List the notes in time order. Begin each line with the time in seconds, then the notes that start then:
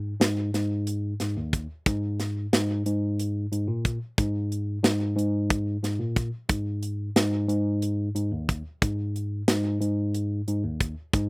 Already playing: G#2
0.20 G#2, snare, closed hi-hat
0.54 G#2, snare, closed hi-hat
0.87 closed hi-hat
1.20 G#2, snare, closed hi-hat
1.36 D#2
1.53 kick, closed hi-hat
1.86 G#2, kick, closed hi-hat
2.20 snare, closed hi-hat
2.52 G#2, snare, closed hi-hat
2.86 G#2, closed hi-hat
3.19 closed hi-hat
3.52 G#2, closed hi-hat
3.68 A#2
3.85 kick, closed hi-hat
4.18 G#2, kick, closed hi-hat
4.52 closed hi-hat
4.83 G#2, snare, closed hi-hat
5.16 G#2, closed hi-hat
5.50 kick, closed hi-hat
5.83 G#2, snare, closed hi-hat
5.99 A#2
6.16 kick, closed hi-hat
6.49 G#2, kick, closed hi-hat
6.83 closed hi-hat
7.16 G#2, snare, closed hi-hat
7.48 G#2, closed hi-hat
7.82 closed hi-hat
8.15 G#2, closed hi-hat
8.32 D#2
8.49 kick, closed hi-hat
8.82 G#2, kick, closed hi-hat
9.16 closed hi-hat
9.48 G#2, snare, closed hi-hat
9.81 G#2, closed hi-hat
10.14 closed hi-hat
10.48 G#2, closed hi-hat
10.63 D#2
10.81 kick, closed hi-hat
11.13 G#2, kick, closed hi-hat